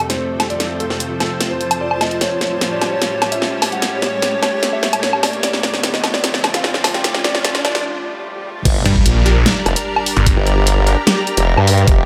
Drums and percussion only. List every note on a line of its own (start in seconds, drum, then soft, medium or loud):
0.10 snare medium
0.10 closed hi-hat medium
0.40 snare medium
0.40 closed hi-hat medium
0.40 low woodblock medium
0.50 closed hi-hat soft
0.60 snare medium
0.60 closed hi-hat medium
0.80 closed hi-hat medium
0.90 snare medium
1.00 closed hi-hat medium
1.20 snare medium
1.20 closed hi-hat soft
1.20 low woodblock medium
1.41 snare medium
1.41 closed hi-hat medium
1.61 closed hi-hat medium
1.71 closed hi-hat medium
1.71 low woodblock medium
1.91 low woodblock medium
2.01 snare medium
2.01 closed hi-hat medium
2.01 low woodblock medium
2.11 closed hi-hat soft
2.21 snare medium
2.21 closed hi-hat medium
2.41 snare medium
2.41 closed hi-hat soft
2.61 snare medium
2.61 closed hi-hat medium
2.81 snare medium
2.81 closed hi-hat medium
2.81 low woodblock medium
3.02 snare medium
3.02 closed hi-hat medium
3.22 snare medium
3.22 closed hi-hat medium
3.22 low woodblock medium
3.32 closed hi-hat medium
3.42 snare medium
3.62 snare medium
3.62 open hi-hat medium
3.62 low woodblock medium
3.72 closed hi-hat soft
3.82 snare medium
3.82 closed hi-hat medium
4.02 snare medium
4.02 closed hi-hat soft
4.22 snare medium
4.22 closed hi-hat medium
4.43 snare medium
4.43 closed hi-hat medium
4.43 low woodblock medium
4.63 snare medium
4.63 closed hi-hat medium
4.83 snare medium
4.83 closed hi-hat medium
4.93 closed hi-hat medium
4.93 low woodblock medium
5.03 snare medium
5.13 low woodblock medium
5.23 snare medium
5.23 open hi-hat medium
5.23 low woodblock medium
5.33 closed hi-hat soft
5.43 snare medium
5.43 closed hi-hat medium
5.53 snare medium
5.63 snare medium
5.63 closed hi-hat medium
5.74 snare medium
5.83 snare loud
5.83 closed hi-hat medium
5.94 snare medium
6.04 snare medium
6.04 closed hi-hat medium
6.04 low woodblock medium
6.14 snare medium
6.24 snare loud
6.24 closed hi-hat medium
6.34 snare medium
6.44 snare loud
6.44 closed hi-hat medium
6.44 low woodblock medium
6.54 snare medium
6.54 closed hi-hat medium
6.64 snare loud
6.74 snare medium
6.84 snare loud
6.84 open hi-hat loud
6.84 low woodblock medium
6.94 snare medium
6.94 closed hi-hat soft
7.04 snare loud
7.04 closed hi-hat medium
7.14 snare medium
7.24 snare loud
7.24 closed hi-hat medium
7.35 snare medium
7.45 snare loud
7.45 closed hi-hat medium
7.55 snare medium
7.55 closed hi-hat soft
7.65 snare loud
7.65 closed hi-hat medium
7.65 low woodblock medium
7.75 snare medium
8.65 kick loud
8.65 closed hi-hat medium
8.65 crash loud
8.86 closed hi-hat medium
8.96 kick medium
9.06 closed hi-hat medium
9.26 closed hi-hat medium
9.46 snare loud
9.46 closed hi-hat medium
9.66 closed hi-hat medium
9.66 low woodblock medium
9.76 closed hi-hat medium
9.96 low woodblock medium
10.06 open hi-hat medium
10.17 closed hi-hat soft
10.26 kick loud
10.26 closed hi-hat medium
10.47 closed hi-hat medium
10.67 closed hi-hat medium
10.87 closed hi-hat medium
11.07 snare loud
11.07 closed hi-hat medium
11.27 closed hi-hat medium
11.37 closed hi-hat medium
11.57 low woodblock medium
11.67 open hi-hat medium
11.78 closed hi-hat soft
11.87 kick loud
11.87 closed hi-hat medium